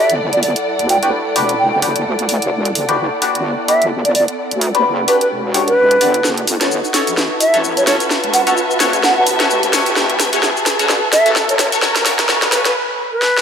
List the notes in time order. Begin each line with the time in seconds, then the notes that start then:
Already playing: E4 A4 D5 E5 F#5, riser
0.10 G1, closed hi-hat
0.33 D5, closed hi-hat
0.43 D5, open hi-hat
0.56 closed hi-hat
0.79 D2, closed hi-hat
0.89 G5, open hi-hat
1.03 D4 F#4 G4 B4 G5, closed hi-hat
1.36 E1 D4 F#4 G4 B4, open hi-hat
1.49 closed hi-hat
1.59 G5
1.72 F#1 G5
1.82 D4 F#4 G4 B4, open hi-hat
1.96 closed hi-hat
2.06 D2
2.19 closed hi-hat
2.29 open hi-hat
2.42 E1, closed hi-hat
2.52 E1
2.65 closed hi-hat
2.75 F#1, open hi-hat
2.89 D4 F#4 G4 B4, closed hi-hat
3.22 D4 F#4 G4 B4, open hi-hat
3.35 G1, closed hi-hat
3.68 D4 F#4 G4 B4 E5, open hi-hat
3.82 G1, closed hi-hat
4.05 D5, closed hi-hat
4.15 D5, open hi-hat
4.28 closed hi-hat
4.51 D2, closed hi-hat
4.61 open hi-hat
4.75 D4 F#4 G4 B4, closed hi-hat
4.85 F#1
5.08 D4 F#4 G4 B4, open hi-hat
5.21 B4, closed hi-hat
5.31 E1
5.54 D4 F#4 G4 C#5, open hi-hat
5.68 B4, closed hi-hat
5.78 E1
5.91 closed hi-hat
6.01 G1 D4 F#4 G4 D5, open hi-hat
6.14 closed hi-hat
6.24 F#1 F#4, snare, shaker
6.38 closed hi-hat
6.47 G1 B4, open hi-hat, shaker
6.61 C#4 F#4 A4 C#5, snare, closed hi-hat, shaker
6.71 shaker
6.85 E5, shaker
6.94 C#4 F#4 A4 C#5, snare, open hi-hat, shaker
7.07 A1, closed hi-hat, shaker
7.17 snare, shaker
7.26 A5
7.40 E5, open hi-hat, shaker
7.54 A1 C#4 F#4 A4 C#5, closed hi-hat, shaker
7.64 shaker
7.77 C#5, closed hi-hat, shaker
7.87 C#4 F#4 A4 C#5, snare, open hi-hat, shaker
8.00 closed hi-hat, shaker
8.10 snare, shaker
8.24 E1, closed hi-hat
8.34 F#5, open hi-hat, shaker
8.47 C#4 F#4 A4 C#5 F#5, closed hi-hat, shaker
8.57 shaker
8.71 shaker
8.80 F#1 C#4 F#4 A4 C#5, snare, open hi-hat, shaker
8.93 closed hi-hat, shaker
9.03 F#5, snare, shaker
9.17 G1 F#5
9.27 open hi-hat, shaker
9.40 C#4 F#4 A4 C#5, snare, closed hi-hat, shaker
9.50 E1, shaker
9.63 closed hi-hat, shaker
9.73 C#4 F#4 A4 C#5, snare, open hi-hat, shaker
9.86 F#1, closed hi-hat, shaker
9.96 F#1, snare, shaker
10.10 closed hi-hat
10.20 G1, snare, open hi-hat, shaker
10.33 C#4 F#4 A4 C#5, closed hi-hat, shaker
10.43 snare, shaker
10.57 shaker
10.66 snare, open hi-hat, shaker
10.79 A1 C#4 F#4 A4 C#5, closed hi-hat, shaker
10.89 snare, shaker
11.13 E5, snare, open hi-hat, shaker
11.26 A1 C#4 F#4 A4 C#5, closed hi-hat, shaker
11.36 snare, shaker
11.49 C#5, closed hi-hat, shaker
11.59 C#5, snare, open hi-hat, shaker
11.72 C#4 F#4 A4 C#5, closed hi-hat, shaker
11.82 C#4 F#4 A4 C#5, snare, shaker
11.96 E1, snare, closed hi-hat, shaker
12.06 C#4 F#4 A4 C#5, snare, open hi-hat, shaker
12.19 snare, closed hi-hat, shaker
12.29 A1 C#4 F#4 A4 C#5, snare, shaker
12.42 snare, closed hi-hat, shaker
12.52 C#4 F#4 A4 B4 C#5, snare, open hi-hat, shaker
12.65 A1 B4, snare, closed hi-hat, shaker
13.12 B4
13.22 snare
13.37 snare